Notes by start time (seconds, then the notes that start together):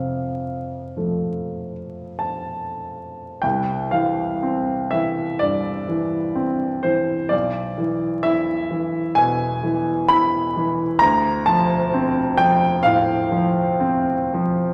Already playing: F2 C3 E5 F5
0.97 F3 A3 A4
2.19 A5
3.42 C2 G5
3.91 E3 F5
4.43 C4
4.91 E3 E5
5.39 G2 D5
5.89 E3
6.35 C4
6.83 E3 C5
7.29 B1 D5
7.78 E3
8.23 E4 E5
8.71 E3
9.15 B2 G#5
9.63 E3
10.08 E4 B5
10.56 E3
10.99 D2 A#5
11.46 F3 A5
11.94 C4
12.37 F3 G5
12.83 A2 F5
13.31 F3
13.80 C4
14.34 F3